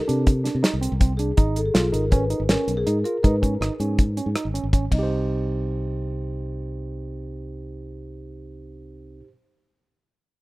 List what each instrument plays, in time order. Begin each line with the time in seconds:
Already playing: marimba A#4
0.08 fingered electric bass C3, tine electric piano D4, closed hi-hat
0.27 kick, closed hi-hat
0.44 tine electric piano D4, snare, closed hi-hat
0.55 fingered electric bass C3
0.63 tine electric piano D#4, snare, closed hi-hat
0.73 fingered electric bass C2
0.81 tine electric piano C4, closed hi-hat
0.92 fingered electric bass C2
1.00 tine electric piano C4, kick, closed hi-hat
1.17 tine electric piano D4, marimba G#4, closed hi-hat
1.37 fingered electric bass G#1, tine electric piano D#4, kick, closed hi-hat
1.56 marimba A4, closed hi-hat
1.66 marimba G#4
1.74 fingered electric bass B1, tine electric piano F4, marimba F4, snare, closed hi-hat
1.85 marimba G#4
1.92 fingered electric bass G#1, tine electric piano D#4, marimba A#4, closed hi-hat
2.11 tine electric piano C#4, marimba B4, kick, closed hi-hat
2.30 tine electric piano D#4, closed hi-hat
2.40 fingered electric bass G#1
2.49 tine electric piano C#4, marimba A#4, snare, closed hi-hat
2.68 fingered electric bass B1, closed hi-hat
2.77 marimba G#4
2.87 fingered electric bass G#2, tine electric piano D#4, closed hi-hat
3.04 tine electric piano F4, marimba A#4, closed hi-hat
3.23 fingered electric bass G#2, tine electric piano D#4, marimba B4, kick, closed hi-hat
3.42 tine electric piano C#4, kick, closed hi-hat
3.61 fingered electric bass G#1, tine electric piano D#4, cross-stick, closed hi-hat
3.80 fingered electric bass G#2, tine electric piano C#4, closed hi-hat
3.99 kick, closed hi-hat
4.17 tine electric piano C#4, closed hi-hat
4.26 fingered electric bass G#2
4.36 tine electric piano D#4, cross-stick, closed hi-hat
4.45 fingered electric bass G#1
4.54 tine electric piano C#4, closed hi-hat
4.63 fingered electric bass G#1
4.73 tine electric piano C#4, kick, closed hi-hat
4.91 fingered electric bass C2, tine electric piano C4, marimba D#5, kick, ride
4.95 tine electric piano D#4 G4
5.03 tine electric piano C5